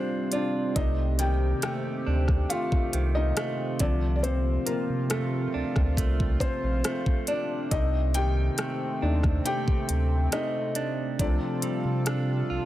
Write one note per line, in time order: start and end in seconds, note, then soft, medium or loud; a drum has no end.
0.00 0.75 C3 medium
0.00 7.67 C3 medium
0.00 0.72 G3 medium
0.00 1.19 G3 medium
0.00 0.29 C4 medium
0.00 7.67 C4 medium
0.00 0.34 D4 medium
0.00 1.22 D4 medium
0.00 0.32 F4 medium
0.00 0.72 F4 medium
0.00 0.28 C5 loud
0.00 0.32 D5 medium
0.32 0.74 D4 medium
0.32 0.85 F4 medium
0.32 0.73 D5 medium
0.32 closed hi-hat medium
0.75 1.54 C2 loud
0.75 3.79 C3 medium
0.75 3.76 C3 medium
0.75 3.77 A3 soft
0.75 1.17 D#4 medium
0.75 3.77 G4 medium
0.75 3.77 D5 medium
0.75 1.21 D#5 medium
0.75 kick loud
0.75 closed hi-hat medium
1.19 2.92 D#3 medium
1.19 1.31 G4 medium
1.19 1.29 G5 medium
1.19 closed hi-hat medium
1.62 2.49 A3 medium
1.62 2.47 G4 medium
1.62 2.52 G5 medium
1.62 cross-stick loud
1.62 closed hi-hat medium
2.07 2.45 D2 loud
2.07 4.26 D4 medium
2.28 kick medium
2.28 cross-stick medium
2.50 3.36 A3 medium
2.50 3.12 F4 medium
2.50 3.11 F5 medium
2.50 closed hi-hat medium
2.72 kick medium
2.93 3.32 C2 medium
2.93 3.89 D#3 medium
2.93 closed hi-hat medium
3.15 3.77 D#4 medium
3.15 3.82 D#5 medium
3.37 5.10 A3 medium
3.37 cross-stick loud
3.37 closed hi-hat medium
3.79 4.58 C2 medium
3.79 4.22 C3 medium
3.79 7.24 D3 medium
3.79 7.24 F3 medium
3.79 4.23 C4 medium
3.79 4.15 D4 medium
3.79 7.67 F4 medium
3.79 4.14 D5 medium
3.79 kick loud
3.79 closed hi-hat medium
4.16 4.23 D5 medium
4.23 7.71 C3 medium
4.23 4.65 C4 medium
4.23 4.68 C5 medium
4.23 closed hi-hat medium
4.66 4.76 C3 soft
4.66 6.40 F3 medium
4.66 5.08 A#3 medium
4.66 5.11 A#4 medium
4.66 closed hi-hat medium
4.89 5.48 C3 medium
5.10 5.97 A3 medium
5.10 6.37 A3 medium
5.10 6.44 A4 medium
5.10 cross-stick loud
5.10 closed hi-hat medium
5.54 5.63 D2 soft
5.54 7.28 D4 medium
5.76 5.96 D2 medium
5.76 kick medium
5.76 cross-stick medium
5.97 6.36 C2 loud
5.97 6.84 A3 medium
5.97 kick medium
5.97 closed hi-hat medium
6.20 kick medium
6.40 7.80 F3 medium
6.40 7.24 C4 medium
6.40 7.30 C5 loud
6.40 kick loud
6.40 closed hi-hat medium
6.63 6.82 A#1 medium
6.84 8.18 A3 medium
6.84 cross-stick loud
6.84 closed hi-hat medium
7.06 kick loud
7.27 8.18 D4 medium
7.27 7.69 D4 medium
7.27 7.68 D5 medium
7.27 closed hi-hat medium
7.71 8.49 C2 loud
7.71 11.16 C3 medium
7.71 11.18 C3 medium
7.71 11.16 A3 medium
7.71 11.16 C4 medium
7.71 8.13 D#4 medium
7.71 8.16 D#5 medium
7.71 kick loud
7.71 closed hi-hat medium
8.14 9.89 D#3 medium
8.14 9.42 G4 medium
8.14 9.41 G5 loud
8.14 closed hi-hat medium
8.58 9.44 A3 medium
8.58 cross-stick loud
8.58 closed hi-hat medium
9.02 9.41 D#2 medium
9.02 10.29 A3 medium
9.02 10.76 D4 medium
9.02 10.29 D4 medium
9.02 10.28 D#4 medium
9.23 kick medium
9.23 cross-stick medium
9.45 10.32 A3 medium
9.45 10.29 G4 medium
9.45 10.28 G5 loud
9.45 closed hi-hat medium
9.68 kick medium
9.89 10.28 D2 medium
9.89 closed hi-hat medium
10.32 11.28 A3 medium
10.32 11.16 D#4 medium
10.32 11.22 D#5 medium
10.32 cross-stick loud
10.32 closed hi-hat medium
10.75 12.07 D4 medium
10.75 closed hi-hat medium
11.18 11.39 C2 loud
11.18 12.65 C3 medium
11.18 11.77 F3 medium
11.18 11.78 A3 soft
11.18 12.65 C4 medium
11.18 11.78 C4 medium
11.18 12.65 D4 medium
11.18 12.65 F4 medium
11.18 12.65 A4 medium
11.18 12.65 D5 medium
11.18 kick loud
11.18 closed hi-hat medium
11.62 11.71 C3 soft
11.62 12.65 G3 medium
11.62 closed hi-hat medium
11.85 12.43 C3 medium
12.06 12.65 D4 medium
12.06 cross-stick loud
12.06 closed hi-hat medium
12.50 12.59 C2 soft
12.50 12.65 F4 medium